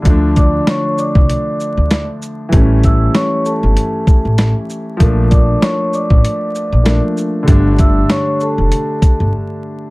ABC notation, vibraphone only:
X:1
M:4/4
L:1/16
Q:"Swing 16ths" 1/4=97
K:Dm
V:1 name="Vibraphone"
z2 [dd']2 [^c^c'] [cc'] [dd']6- [dd'] z3 | z2 [ee']2 [^c^c'] [cc'] [Aa]6- [Aa] z3 | z2 [dd']2 [^c^c'] [cc'] [dd']6- [dd'] z3 | z2 [ee']2 [^c^c'] [cc'] [Aa]6 z4 |]